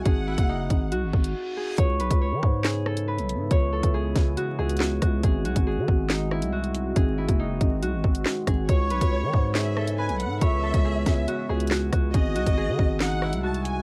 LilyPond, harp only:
\new Staff \with { instrumentName = "Harp" } { \time 4/4 \key cis \minor \tempo 4 = 139 gis'8 e'8 dis'4 fis'4. gis'8 | cis''8 b'8 cis''4 gis'8 a'8 b'4 | cis''8 a'8 gis'4 fis'8 gis'8 fis'8 fis'8 | gis'8 fis'8 gis'4 dis'8 e'8 fis'4 |
gis'8 e'8 dis'4 fis'4. gis'8 | cis''8 b'8 cis''4 gis'8 a'8 b'4 | cis''8 a'8 gis'4 fis'8 gis'8 fis'8 fis'8 | gis'8 fis'8 gis'4 dis'8 e'8 fis'4 | }